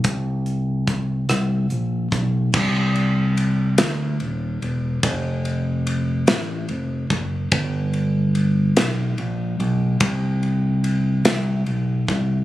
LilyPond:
<<
  \new Staff \with { instrumentName = "Fingered electric bass" } { \clef bass \time 6/8 \key g \dorian \tempo 4. = 48 c,4. c,8 bes,,8 b,,8 | c,4. d,8 ees,,8 e,,8 | f,,4. a,,8 f,,8 ges,,8 | g,,4. b,,8 bes,,8 b,,8 |
c,4. c,8 b,,8 c,8 | }
  \new DrumStaff \with { instrumentName = "Drums" } \drummode { \time 6/8 <hh bd>8 hh8 <hh bd>8 <hh ss>8 hh8 <hh bd>8 | <cymc bd>8 cymr8 cymr8 <cymr sn>8 cymr8 cymr8 | <bd cymr>8 cymr8 cymr8 <cymr sn>8 cymr8 <bd cymr>8 | <bd cymr>8 cymr8 cymr8 <cymr sn>8 cymr8 cymr8 |
<bd cymr>8 cymr8 cymr8 <cymr sn>8 cymr8 <bd cymr>8 | }
>>